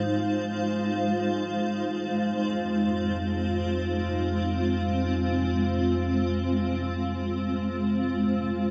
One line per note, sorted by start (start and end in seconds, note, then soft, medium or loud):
0.00 1.61 G#2 medium
0.00 8.71 G#3 medium
0.00 4.91 D#4 medium
0.00 8.71 F4 medium
0.00 8.71 C5 medium
0.00 8.71 F5 medium
1.67 8.71 F2 medium
1.78 8.71 C4 medium